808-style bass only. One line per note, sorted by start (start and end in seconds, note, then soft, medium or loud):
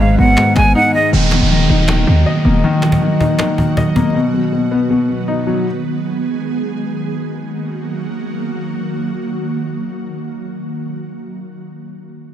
0.00 0.17 G#1 loud
0.19 0.37 G#1 loud
0.56 0.74 G#1 loud
1.13 1.40 D#1 loud
1.41 1.68 D#1 loud
1.69 2.06 D#1 loud
2.07 2.25 D#2 loud
2.45 2.63 D#1 loud